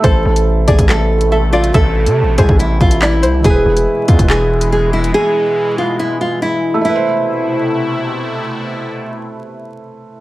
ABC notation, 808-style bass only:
X:1
M:4/4
L:1/16
Q:1/4=141
K:Am
V:1 name="808-style bass" clef=bass
A,,,2 A,,,4 A,,, A,,,8- A,,, | A,,,3 C,3/2 A,,,3/2 C,, A,,,3 A,,,4 C,,2 | E,,,2 E,,,2 z2 E,, E,,,8- E,,, | z16 |
z16 | z16 |]